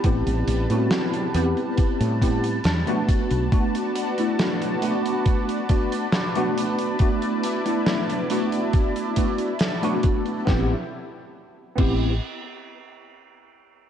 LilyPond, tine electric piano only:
\new Staff \with { instrumentName = "Tine electric piano" } { \time 4/4 \key a \dorian \tempo 4 = 69 <b c' e' g'>8. <b c' e' fis'>8. <b c' e' g'>4 <b c' e' g'>8 r16 <a b d' fis'>8. | <a b d' fis'>8. <a b d' e'>8. <a b d' fis'>4 <a b d' fis'>8 r16 <a b d' fis'>8. | <a b d' fis'>8. <a b d' e'>8. <a b d' fis'>4 <a b d' fis'>8 r16 <a b d' fis'>8. | <b c' e' g'>16 r4 r16 <b c' e' g'>8 r2 | }